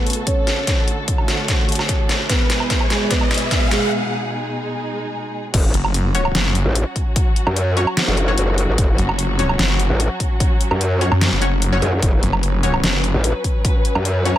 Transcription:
Already playing: C#3 A3 B3 F#4 A4 B4, riser
0.07 closed hi-hat
0.10 closed hi-hat
0.13 closed hi-hat
0.27 C#4 C#5, kick, closed hi-hat
0.47 snare, closed hi-hat
0.67 D3 A3 F#4, kick, snare, closed hi-hat
0.88 closed hi-hat
1.08 kick, closed hi-hat
1.18 low woodblock
1.28 snare, closed hi-hat
1.48 kick, snare, closed hi-hat
1.69 closed hi-hat
1.72 closed hi-hat
1.75 snare, closed hi-hat, low woodblock
1.89 kick, closed hi-hat
2.09 snare, closed hi-hat
2.29 B2 G#3 B3 E4 G#4 B4, kick, snare, closed hi-hat
2.50 snare, closed hi-hat
2.60 low woodblock
2.70 kick, snare, closed hi-hat
2.80 low woodblock
2.90 G#3 G#4, snare, closed hi-hat
3.11 B3 B4, kick, snare, closed hi-hat
3.21 low woodblock
3.31 snare, closed hi-hat
3.34 closed hi-hat
3.38 closed hi-hat
3.51 kick, snare, closed hi-hat
3.71 G#3 G#4, snare, closed hi-hat
3.92 G#3 D#4
5.54 F#1 F#3 C#4 F#4, kick, closed hi-hat, crash
5.74 F#1, closed hi-hat
5.85 low woodblock
5.94 closed hi-hat
6.15 C#4 F#4 C#5, closed hi-hat
6.25 low woodblock
6.35 F#1, snare, closed hi-hat
6.55 closed hi-hat
6.66 A1
6.75 closed hi-hat
6.96 kick, closed hi-hat
7.16 kick, closed hi-hat
7.36 closed hi-hat
7.47 F#2, low woodblock
7.56 closed hi-hat
7.77 C#4 F#4 C#5, closed hi-hat
7.87 low woodblock
7.97 snare, closed hi-hat
8.07 F#1
8.17 closed hi-hat
8.28 C#4 F#4 C#5
8.38 F#1, closed hi-hat
8.58 closed hi-hat
8.68 G#1
8.78 F#1, kick, closed hi-hat
8.98 F#1, closed hi-hat
9.09 low woodblock
9.19 closed hi-hat
9.39 C#4 F#4 C#5, closed hi-hat
9.49 low woodblock
9.59 F#1, snare, closed hi-hat
9.80 closed hi-hat
9.90 A1
10.00 closed hi-hat
10.20 kick, closed hi-hat
10.40 kick, closed hi-hat
10.61 closed hi-hat
10.71 F#2, low woodblock
10.81 closed hi-hat
11.01 C#4 F#4 C#5, closed hi-hat
11.12 F#2, low woodblock
11.21 snare, closed hi-hat
11.32 F#1
11.42 C#4 F#4 C#5, closed hi-hat
11.62 closed hi-hat
11.72 F#1 C#4 F#4 C#5
11.82 F#2, closed hi-hat
12.02 F#1 B4, kick, closed hi-hat
12.23 F#1, closed hi-hat
12.33 low woodblock
12.43 closed hi-hat
12.63 C#4 F#4 C#5, closed hi-hat
12.74 low woodblock
12.84 F#1, snare, closed hi-hat
13.04 closed hi-hat
13.14 A1
13.24 closed hi-hat
13.44 kick, closed hi-hat
13.65 kick, closed hi-hat
13.85 closed hi-hat
13.95 F#2, low woodblock
14.05 closed hi-hat
14.25 C#4 F#4 C#5, closed hi-hat

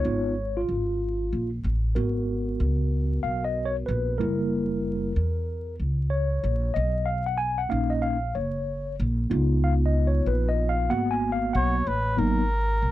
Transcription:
Already playing: C#5
0.05 G#1 B3 D#4 F4
0.57 F4
0.69 G#1
1.33 A#1
1.64 A1
1.95 G#1 B3 F#4 A#4
2.60 C#2
3.23 B1 F5
3.44 D#5
3.65 C#5
3.86 A#1 B4
4.18 F#1 G3 A#3 E4 A#4
5.16 E2
5.80 C#2
6.10 C#5
6.44 A#1
6.74 B1 D#5
7.06 F5
7.26 F#5
7.38 G#5
7.58 F#5
7.69 A#1 A#3 C#4 D#4 F5
7.90 D#5
8.02 F5
8.35 F#1 C#5
9.00 A#1
9.30 C#2 B3 D#4 F4
9.64 F5
9.86 D#5
10.07 C#5
10.26 A#1 B4
10.49 D#5
10.69 F5
10.89 G#1 A#3 B3 F#4 F#5
11.11 G#5
11.32 F5
11.53 B1 C#5 F#5
11.75 C#5
11.87 A1 B4
12.17 G#1 F#3 A#3 B3 D#4 A#4
12.82 B1

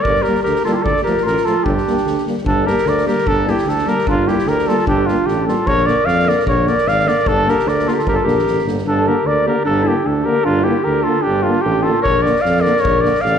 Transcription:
0.02 G1 A#4 D5, kick
0.15 snare
0.22 G4 A#4, snare
0.28 G3 A#3
0.35 snare
0.43 D2 G4 A#4, snare
0.55 snare
0.64 G3 A#3 F4 A4, snare
0.72 E4 F4 G4 A4
0.83 D2 A4 D5, kick
0.96 snare
1.02 G4 A#4, snare
1.07 F3 A3
1.17 snare
1.22 A1 F4 A#4
1.27 snare
1.37 snare
1.44 F3 A3 F4 A4, snare
1.64 G1 D4 G4, kick
1.77 snare
1.87 G3 A#3, snare
1.97 snare
2.04 D2, snare
2.18 snare
2.26 G3 A#3, snare
2.37 snare
2.45 G1 D4 A4, kick
2.66 G3 A#3 G4 A#4, snare
2.77 snare
2.85 D2 A#4 D5, snare
2.97 snare
3.06 G3 A#3 G4 A#4, snare
3.18 snare
3.26 G1 D4 A4, kick
3.45 G3 A#3 E4, snare
3.50 G4
3.58 snare
3.65 D2 D4, snare
3.69 A4
3.78 snare
3.85 G3 A#3 G4 A#4, snare
3.98 snare
4.05 G1 D4 F4, kick
4.27 G3 A#3 E4 G4, snare
4.38 snare
4.46 D2 G4 A#4, snare
4.59 snare
4.68 G3 A#3 F4 A4, snare
4.79 snare
4.86 G1 D4 G4, kick
5.07 G3 A#3 D4 F4, snare
5.26 A1 D4 G4, snare
5.46 G3 A#3 F4 A4, snare
5.66 A#1 A#4 C#5, kick
5.86 D3 A#3 A#4 D5, snare
6.05 F2 D5 F5, snare
6.19 snare
6.25 D3 A#3 A#4 D5, snare
6.40 snare
6.45 A#1 A#4 C#5, kick
6.65 D3 A#3 A#4 D5, snare
6.78 snare
6.86 G#1 D5 F5, snare
6.99 snare
7.05 D3 A#3 A#4 D5, snare
7.18 snare
7.25 G1 D4 A4, kick
7.47 D3 A#3 G4 A#4, snare
7.59 snare
7.65 D2 A#4 D5, snare
7.79 snare
7.86 D3 A#3 F4 A4 A#4, snare
7.91 G4
7.98 F4 A4, snare
8.06 G1 G4 A#4, kick
8.13 F4 A4
8.22 A#1 A#3 G4 A#4
8.27 D3, snare
8.39 snare
8.44 A1, snare
8.58 snare
8.65 G1 D3 A#3, snare
8.78 snare
8.85 G1 D4 A4
9.06 D3 A#3 G4 A#4
9.25 D2 A#4 D5
9.46 D3 A#3 G4 A#4
9.65 G1 D4 A4
9.84 D3 A#3 E4 G4
10.04 D2 D4 A4
10.24 D3 G4 A#4
10.28 A#3
10.45 G1 D4 F4
10.64 D3 A#3 E4 G4
10.82 D2 G4 A#4
11.02 D3 A#3 F4 A4
11.22 D4 G4
11.26 G1
11.41 D3 D4 F4
11.48 A#3
11.62 A1 D4 G4
11.82 F4 A4
11.86 D3 A#3
12.01 A#1 A#4 C#5
12.06 kick
12.22 D3 A#4 D5, snare
12.26 A#3
12.36 snare
12.40 D5 F5
12.45 F2, snare
12.56 A#4, snare
12.61 D5, snare
12.65 D3 A#3
12.77 C#5, snare
12.82 A#1 A#4, kick
13.01 A#3 A#4 D5, snare
13.05 D3
13.15 snare
13.21 A1 D5 F5, snare
13.35 snare

